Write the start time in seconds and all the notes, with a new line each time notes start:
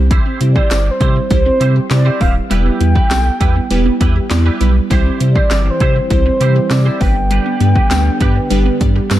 Already playing: C2 G3 C4 E4 G4 C5
0.11 G3 E4 G4 C5, kick, closed hi-hat
0.26 C4
0.41 C3 G3 C4 E4 G4 C5, muted clean electric guitar stroke, closed hi-hat
0.51 D5
0.56 E4 G4 C5, kick
0.70 G1 G3 C4 E4 G4 C5 G5, muted clean electric guitar stroke, snare, clap, closed hi-hat, tambourine
0.86 muted clean electric guitar stroke
0.91 C5
1.00 C3 G3 C4 E4 G4 C5, kick, closed hi-hat
1.15 C4, muted clean electric guitar stroke
1.30 C2 G3 C4 E4 G4 C5, muted clean electric guitar stroke, kick, closed hi-hat
1.45 C4, muted clean electric guitar stroke
1.60 C3 G3 C4 E4 G4 C5, closed hi-hat
1.75 G4, muted clean electric guitar stroke
1.90 C3 G3 C4 E4 G4 C5 D5, muted clean electric guitar stroke, snare, clap, closed hi-hat, tambourine
2.05 E4 G4 C5
2.20 D1 G3 C4 E4 G4 B4 C5 F5, kick, open hi-hat
2.35 muted clean electric guitar stroke
2.50 E1 G3 B3 E4 G4 B4 G5, closed hi-hat
2.66 B3
2.80 E2 G3 B3 E4 G4 B4, muted clean electric guitar stroke, closed hi-hat
2.95 E4 G4 B4, kick
3.10 B1 G3 B3 E4 G4 A4 G5, muted clean electric guitar stroke, snare, clap, closed hi-hat, tambourine
3.26 muted clean electric guitar stroke
3.40 E2 G3 B3 E4 G4 B4, kick, closed hi-hat
3.56 B3, muted clean electric guitar stroke
3.70 E1 G3 B3 E4 G4 B4, muted clean electric guitar stroke, closed hi-hat
3.86 B3, muted clean electric guitar stroke
4.00 E2 G3 B3 E4 G4 B4, kick, closed hi-hat
4.16 G4, muted clean electric guitar stroke
4.30 E2 G3 B3 E4 G4 D5, muted clean electric guitar stroke, snare, clap, closed hi-hat, tambourine
4.46 E4 G4 B4
4.60 B1 G3 B3 E4 G4 B4, closed hi-hat
4.76 muted clean electric guitar stroke
4.90 C2 E3 G3 C4 E4 G4 C5, kick, closed hi-hat
5.06 C4
5.20 C3 G3 C4 E4 G4 C5, muted clean electric guitar stroke, closed hi-hat
5.31 D5
5.36 E4 G4 C5, kick
5.50 G1 G3 C4 E4 G4 D5 G5, snare, clap, closed hi-hat, tambourine
5.66 muted clean electric guitar stroke
5.71 C5
5.80 C3 G3 C4 E4 G4 C5, kick, closed hi-hat
5.96 C4, muted clean electric guitar stroke
6.10 C2 G3 C4 E4 G4 C5, muted clean electric guitar stroke, kick, closed hi-hat
6.26 C4, muted clean electric guitar stroke
6.40 C3 G3 C4 E4 G4 C5, closed hi-hat
6.56 G4, muted clean electric guitar stroke
6.70 C3 G3 C4 E4 G4 C5 D5, muted clean electric guitar stroke, snare, clap, closed hi-hat, tambourine
6.85 E4 G4 C5
7.00 G1 D3 G3 B3 D4 G4 B4 G5, kick, open hi-hat
7.16 muted clean electric guitar stroke
7.31 G3 D4 G4 B4, closed hi-hat
7.46 B3
7.60 G2 G3 B3 D4 G4 B4, muted clean electric guitar stroke, closed hi-hat
7.75 D4 G4 B4, kick
7.90 D2 G3 B3 D4 G4 B4 G5, snare, clap, closed hi-hat, tambourine
8.06 muted clean electric guitar stroke
8.20 G2 G3 B3 D4 G4 B4, kick, closed hi-hat
8.36 B3, muted clean electric guitar stroke
8.50 G1 G3 B3 D4 G4 B4, muted clean electric guitar stroke, closed hi-hat
8.66 B3, muted clean electric guitar stroke
8.80 G2 G3 B3 D4 G4 D5, kick, closed hi-hat
8.96 G4, muted clean electric guitar stroke
9.11 G2 G3 B3 D4 G4 B4, muted clean electric guitar stroke, snare, clap, closed hi-hat, tambourine